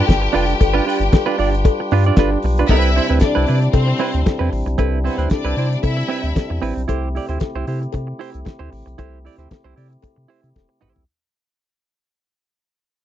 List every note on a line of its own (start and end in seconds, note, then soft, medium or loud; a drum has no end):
0.00 2.65 G3 medium
0.00 2.65 D4 medium
0.00 2.66 F4 medium
0.00 2.40 G4 loud
0.00 0.58 A4 medium
0.00 2.65 B4 medium
0.00 2.40 G5 loud
0.07 0.28 G1 medium
0.07 muted clean electric guitar stroke soft
0.07 kick loud
0.07 snare loud
0.07 closed hi-hat medium
0.07 cowbell medium
0.22 muted clean electric guitar stroke soft
0.33 0.54 F1 medium
0.33 0.53 D4 medium
0.33 0.47 F4 loud
0.33 0.46 B4 loud
0.33 open hi-hat medium
0.48 muted clean electric guitar stroke soft
0.48 closed hi-hat medium
0.60 0.80 G1 loud
0.60 2.68 G4 medium
0.60 muted clean electric guitar stroke medium
0.60 kick loud
0.60 closed hi-hat medium
0.60 cowbell medium
0.74 0.85 D4 medium
0.74 0.86 F4 medium
0.74 0.86 B4 medium
0.86 1.02 D4 medium
0.86 1.00 F4 medium
0.86 0.98 B4 medium
0.86 open hi-hat medium
1.00 1.09 G1 loud
1.00 muted clean electric guitar stroke soft
1.00 closed hi-hat medium
1.12 muted clean electric guitar stroke soft
1.12 kick loud
1.12 snare loud
1.12 closed hi-hat medium
1.12 cowbell medium
1.26 1.37 D4 medium
1.26 1.38 F4 medium
1.26 1.39 B4 medium
1.38 1.69 G1 medium
1.38 1.54 D4 medium
1.38 1.52 F4 medium
1.38 1.52 D5 medium
1.38 open hi-hat medium
1.52 muted clean electric guitar stroke soft
1.52 closed hi-hat medium
1.65 muted clean electric guitar stroke soft
1.65 kick loud
1.65 closed hi-hat medium
1.65 cowbell medium
1.80 muted clean electric guitar stroke soft
1.91 2.11 G2 loud
1.91 2.07 D4 medium
1.91 2.06 F4 medium
1.91 2.06 B4 medium
1.91 open hi-hat medium
2.04 2.17 D4 medium
2.04 2.18 F4 medium
2.04 2.19 D5 medium
2.04 closed hi-hat soft
2.16 2.37 G1 medium
2.16 2.37 D4 medium
2.16 2.32 F4 medium
2.16 2.31 B4 loud
2.16 kick loud
2.16 snare loud
2.16 closed hi-hat medium
2.16 cowbell medium
2.32 muted clean electric guitar stroke medium
2.42 2.64 B1 medium
2.42 muted clean electric guitar stroke medium
2.42 open hi-hat medium
2.58 2.69 D4 medium
2.58 2.70 F4 medium
2.58 2.70 B4 medium
2.58 closed hi-hat medium
2.68 3.00 C2 loud
2.68 11.05 C3 medium
2.68 6.85 G3 medium
2.68 2.90 C4 medium
2.68 11.04 C4 medium
2.68 6.85 D4 medium
2.68 3.18 E4 loud
2.68 2.90 E4 medium
2.68 11.05 E4 medium
2.68 2.91 B4 medium
2.68 3.18 E5 loud
2.68 kick loud
2.68 crash medium
2.68 cowbell medium
2.96 3.09 C4 medium
2.96 3.08 E4 medium
2.96 3.09 C5 medium
2.96 open hi-hat medium
3.09 3.19 D2 loud
3.09 3.20 C4 medium
3.09 3.21 E4 medium
3.09 3.21 B4 medium
3.09 closed hi-hat medium
3.20 3.70 D4 loud
3.20 3.70 D5 loud
3.20 muted clean electric guitar stroke soft
3.20 kick loud
3.20 snare loud
3.20 closed hi-hat medium
3.20 cowbell medium
3.35 3.46 C2 loud
3.35 3.46 C4 medium
3.35 3.46 E4 medium
3.35 3.47 B4 medium
3.47 3.69 C3 loud
3.47 3.63 C4 medium
3.47 3.61 E4 medium
3.47 3.60 B4 medium
3.47 open hi-hat medium
3.61 muted clean electric guitar stroke soft
3.61 closed hi-hat soft
3.72 3.94 C3 loud
3.72 4.48 C4 loud
3.72 4.48 C5 loud
3.72 muted clean electric guitar stroke soft
3.72 kick loud
3.72 closed hi-hat medium
3.72 cowbell loud
3.87 muted clean electric guitar stroke soft
3.99 4.19 C4 medium
3.99 4.13 E4 medium
3.99 4.12 B4 medium
3.99 open hi-hat medium
4.13 4.24 D2 loud
4.13 muted clean electric guitar stroke medium
4.13 closed hi-hat soft
4.26 muted clean electric guitar stroke soft
4.26 kick loud
4.26 snare loud
4.26 closed hi-hat medium
4.26 cowbell medium
4.39 4.50 E2 loud
4.39 4.51 C4 medium
4.39 4.51 E4 medium
4.39 4.52 B4 medium
4.52 4.63 A1 loud
4.52 muted clean electric guitar stroke soft
4.52 open hi-hat medium
4.66 4.76 B1 medium
4.66 muted clean electric guitar stroke soft
4.66 closed hi-hat medium
4.78 5.09 C2 loud
4.78 4.98 C4 medium
4.78 4.98 E4 medium
4.78 4.98 B4 loud
4.78 kick loud
4.78 closed hi-hat medium
4.78 cowbell medium
5.04 5.16 B3 medium
5.04 5.18 C4 medium
5.04 5.18 E4 medium
5.04 5.16 B4 medium
5.04 5.18 C5 medium
5.04 open hi-hat medium
5.17 5.28 D2 loud
5.17 5.28 C4 medium
5.17 5.30 C4 medium
5.17 5.30 E4 medium
5.17 5.31 B4 medium
5.17 5.28 C5 medium
5.17 closed hi-hat soft
5.30 5.80 D4 loud
5.30 5.80 D5 loud
5.30 muted clean electric guitar stroke soft
5.30 kick loud
5.30 snare medium
5.30 closed hi-hat medium
5.30 cowbell medium
5.45 5.54 C2 loud
5.45 5.56 C4 medium
5.45 5.57 E4 medium
5.45 5.58 B4 medium
5.57 5.77 C3 loud
5.57 5.73 C4 medium
5.57 5.70 E4 medium
5.57 5.70 C5 medium
5.57 open hi-hat medium
5.70 muted clean electric guitar stroke soft
5.70 closed hi-hat soft
5.82 6.03 C3 loud
5.82 6.58 E4 loud
5.82 6.58 E5 loud
5.82 muted clean electric guitar stroke soft
5.82 kick loud
5.82 closed hi-hat medium
5.82 cowbell medium
5.97 muted clean electric guitar stroke soft
6.08 6.29 C4 medium
6.08 6.23 E4 medium
6.08 6.22 B4 medium
6.08 open hi-hat medium
6.23 6.33 D2 loud
6.23 muted clean electric guitar stroke medium
6.23 closed hi-hat soft
6.36 kick loud
6.36 snare loud
6.36 closed hi-hat medium
6.36 cowbell medium
6.50 6.60 E2 medium
6.50 muted clean electric guitar stroke soft
6.62 6.73 A1 medium
6.62 6.81 C4 medium
6.62 6.75 E4 medium
6.62 6.75 B4 loud
6.62 open hi-hat medium
6.76 6.86 B1 loud
6.76 muted clean electric guitar stroke medium
6.76 closed hi-hat medium
6.88 7.19 C2 loud
6.88 11.05 A3 medium
6.88 7.08 E4 medium
6.88 7.08 G4 medium
6.88 11.05 G4 medium
6.88 7.08 C5 medium
6.88 kick loud
6.88 closed hi-hat medium
6.88 cowbell medium
7.15 7.29 E4 medium
7.15 7.28 G4 medium
7.15 7.28 D5 medium
7.15 open hi-hat medium
7.29 7.38 D2 loud
7.29 7.40 E4 medium
7.29 7.40 G4 medium
7.29 7.41 C5 medium
7.29 closed hi-hat soft
7.40 kick loud
7.40 snare loud
7.40 closed hi-hat medium
7.40 cowbell medium
7.55 7.64 C2 loud
7.55 7.66 E4 medium
7.55 7.67 G4 medium
7.55 7.67 C5 medium
7.67 7.87 C3 loud
7.67 7.83 E4 medium
7.67 7.82 G4 medium
7.67 7.81 C5 medium
7.67 open hi-hat medium
7.82 muted clean electric guitar stroke soft
7.82 closed hi-hat medium
7.93 8.14 C3 loud
7.93 muted clean electric guitar stroke soft
7.93 kick loud
7.93 closed hi-hat medium
7.93 cowbell loud
8.07 muted clean electric guitar stroke soft
8.19 8.39 E4 medium
8.19 8.33 G4 medium
8.19 8.31 C5 medium
8.19 open hi-hat medium
8.33 8.44 C2 medium
8.33 muted clean electric guitar stroke medium
8.33 closed hi-hat soft
8.45 muted clean electric guitar stroke soft
8.45 kick loud
8.45 snare loud
8.45 closed hi-hat medium
8.45 cowbell medium
8.59 8.69 D2 loud
8.59 8.71 E4 medium
8.59 8.71 G4 medium
8.59 8.71 C5 medium
8.72 8.83 A1 medium
8.72 muted clean electric guitar stroke soft
8.72 open hi-hat medium
8.86 8.96 B1 loud
8.86 muted clean electric guitar stroke soft
8.86 closed hi-hat medium
8.98 9.29 C2 loud
8.98 9.18 E4 medium
8.98 9.18 G4 medium
8.98 9.18 C5 loud
8.98 kick loud
8.98 closed hi-hat medium
8.98 cowbell medium
9.25 9.39 E4 medium
9.25 9.38 G4 medium
9.25 9.38 D5 medium
9.25 open hi-hat medium
9.38 9.47 D2 loud
9.38 9.49 E4 medium
9.38 9.50 G4 medium
9.38 9.51 C5 medium
9.38 closed hi-hat medium
9.50 muted clean electric guitar stroke soft
9.50 kick loud
9.50 snare loud
9.50 closed hi-hat medium
9.50 cowbell medium
9.64 9.74 C2 medium
9.64 9.75 E4 medium
9.64 9.76 G4 medium
9.64 9.77 C5 medium
9.76 9.97 C3 medium
9.76 9.92 E4 medium
9.76 9.90 G4 medium
9.76 9.90 D5 medium
9.76 open hi-hat medium
9.90 muted clean electric guitar stroke soft
9.90 closed hi-hat medium
10.02 muted clean electric guitar stroke medium
10.02 kick loud
10.02 closed hi-hat medium
10.02 cowbell loud
10.16 10.27 C3 medium
10.16 muted clean electric guitar stroke soft
10.28 10.48 E4 medium
10.28 10.42 G4 medium
10.28 10.42 C5 medium
10.28 open hi-hat medium
10.43 10.53 C3 loud
10.43 muted clean electric guitar stroke medium
10.43 closed hi-hat soft
10.56 10.66 E1 medium
10.56 kick loud
10.56 snare medium
10.56 cowbell medium
10.69 muted clean electric guitar stroke soft
10.81 10.93 A1 medium
10.81 11.02 E4 medium
10.81 10.95 G4 medium
10.81 10.94 C5 loud
10.81 mid tom loud
10.95 11.05 B1 loud
10.95 muted clean electric guitar stroke soft
10.95 floor tom medium